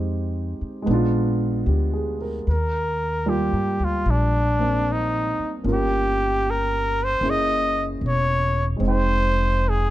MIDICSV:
0, 0, Header, 1, 5, 480
1, 0, Start_track
1, 0, Key_signature, -3, "major"
1, 0, Tempo, 793651
1, 1488, Time_signature, 4, 2, 24, 8
1, 5989, End_track
2, 0, Start_track
2, 0, Title_t, "Trumpet"
2, 0, Program_c, 0, 56
2, 1508, Note_on_c, 0, 70, 65
2, 1991, Note_on_c, 0, 67, 69
2, 2000, Note_off_c, 0, 70, 0
2, 2323, Note_on_c, 0, 65, 64
2, 2332, Note_off_c, 0, 67, 0
2, 2480, Note_on_c, 0, 62, 78
2, 2489, Note_off_c, 0, 65, 0
2, 2974, Note_on_c, 0, 63, 71
2, 2983, Note_off_c, 0, 62, 0
2, 3353, Note_off_c, 0, 63, 0
2, 3464, Note_on_c, 0, 67, 75
2, 3933, Note_on_c, 0, 70, 85
2, 3942, Note_off_c, 0, 67, 0
2, 4256, Note_on_c, 0, 72, 76
2, 4265, Note_off_c, 0, 70, 0
2, 4414, Note_on_c, 0, 75, 93
2, 4423, Note_off_c, 0, 72, 0
2, 4762, Note_off_c, 0, 75, 0
2, 4884, Note_on_c, 0, 73, 79
2, 5240, Note_off_c, 0, 73, 0
2, 5368, Note_on_c, 0, 72, 82
2, 5859, Note_on_c, 0, 68, 76
2, 5868, Note_off_c, 0, 72, 0
2, 5989, Note_off_c, 0, 68, 0
2, 5989, End_track
3, 0, Start_track
3, 0, Title_t, "Grand piano"
3, 0, Program_c, 1, 0
3, 0, Control_c, 1, 64, 127
3, 0, Note_on_c, 1, 56, 52
3, 0, Note_on_c, 1, 60, 47
3, 0, Note_on_c, 1, 63, 47
3, 0, Note_on_c, 1, 67, 59
3, 488, Note_off_c, 1, 56, 0
3, 497, Note_on_c, 1, 56, 57
3, 521, Note_on_c, 1, 59, 52
3, 525, Note_off_c, 1, 60, 0
3, 525, Note_off_c, 1, 63, 0
3, 527, Note_off_c, 1, 67, 0
3, 527, Control_c, 1, 64, 0
3, 545, Note_on_c, 1, 62, 51
3, 563, Note_on_c, 1, 65, 64
3, 621, Control_c, 1, 64, 127
3, 1008, Note_on_c, 1, 67, 36
3, 1170, Note_on_c, 1, 68, 42
3, 1308, Note_off_c, 1, 67, 0
3, 1340, Note_on_c, 1, 70, 44
3, 1418, Note_off_c, 1, 68, 0
3, 1477, Note_off_c, 1, 56, 0
3, 1489, Note_off_c, 1, 59, 0
3, 1495, Control_c, 1, 64, 0
3, 1501, Note_off_c, 1, 62, 0
3, 1510, Note_off_c, 1, 65, 0
3, 1584, Note_off_c, 1, 70, 0
3, 1610, Control_c, 1, 64, 127
3, 1971, Note_on_c, 1, 55, 40
3, 1971, Note_on_c, 1, 58, 41
3, 1973, Note_on_c, 1, 74, 38
3, 1980, Note_on_c, 1, 65, 45
3, 2768, Note_off_c, 1, 58, 0
3, 2777, Note_on_c, 1, 58, 34
3, 2783, Note_on_c, 1, 60, 32
3, 3399, Note_off_c, 1, 58, 0
3, 3408, Note_on_c, 1, 58, 41
3, 3410, Note_off_c, 1, 55, 0
3, 3412, Note_off_c, 1, 74, 0
3, 3415, Note_off_c, 1, 60, 0
3, 3415, Note_off_c, 1, 65, 0
3, 3418, Note_on_c, 1, 61, 39
3, 3419, Control_c, 1, 64, 0
3, 3427, Note_on_c, 1, 65, 37
3, 3438, Note_on_c, 1, 70, 49
3, 3536, Control_c, 1, 64, 127
3, 4353, Note_off_c, 1, 58, 0
3, 4361, Note_off_c, 1, 61, 0
3, 4363, Note_on_c, 1, 58, 40
3, 4370, Note_on_c, 1, 61, 38
3, 4374, Note_off_c, 1, 65, 0
3, 4374, Control_c, 1, 64, 0
3, 4379, Note_off_c, 1, 70, 0
3, 4381, Note_on_c, 1, 64, 37
3, 4388, Note_on_c, 1, 68, 43
3, 4486, Control_c, 1, 64, 127
3, 5301, Note_on_c, 1, 56, 48
3, 5321, Note_on_c, 1, 60, 47
3, 5322, Note_off_c, 1, 58, 0
3, 5325, Note_off_c, 1, 61, 0
3, 5331, Note_off_c, 1, 64, 0
3, 5331, Control_c, 1, 64, 0
3, 5334, Note_off_c, 1, 68, 0
3, 5342, Note_on_c, 1, 63, 43
3, 5369, Note_on_c, 1, 79, 53
3, 5421, Control_c, 1, 64, 127
3, 5989, Note_off_c, 1, 56, 0
3, 5989, Note_off_c, 1, 60, 0
3, 5989, Note_off_c, 1, 63, 0
3, 5989, Note_off_c, 1, 79, 0
3, 5989, End_track
4, 0, Start_track
4, 0, Title_t, "Upright bass"
4, 0, Program_c, 2, 32
4, 0, Note_on_c, 2, 41, 68
4, 338, Note_off_c, 2, 41, 0
4, 527, Note_on_c, 2, 34, 72
4, 983, Note_off_c, 2, 34, 0
4, 1006, Note_on_c, 2, 38, 57
4, 1465, Note_off_c, 2, 38, 0
4, 1495, Note_on_c, 2, 39, 59
4, 2110, Note_off_c, 2, 39, 0
4, 2135, Note_on_c, 2, 43, 46
4, 2282, Note_off_c, 2, 43, 0
4, 2297, Note_on_c, 2, 38, 51
4, 2444, Note_off_c, 2, 38, 0
4, 2454, Note_on_c, 2, 34, 65
4, 3229, Note_off_c, 2, 34, 0
4, 3414, Note_on_c, 2, 31, 64
4, 4343, Note_off_c, 2, 31, 0
4, 4360, Note_on_c, 2, 30, 63
4, 4817, Note_off_c, 2, 30, 0
4, 4846, Note_on_c, 2, 28, 61
4, 5300, Note_off_c, 2, 28, 0
4, 5322, Note_on_c, 2, 29, 69
4, 5989, Note_off_c, 2, 29, 0
4, 5989, End_track
5, 0, Start_track
5, 0, Title_t, "Muted upright bass strokes"
5, 371, Note_on_c, 9, 29, 32
5, 432, Note_off_c, 9, 29, 0
5, 3261, Note_on_c, 9, 29, 29
5, 3322, Note_off_c, 9, 29, 0
5, 5989, End_track
0, 0, End_of_file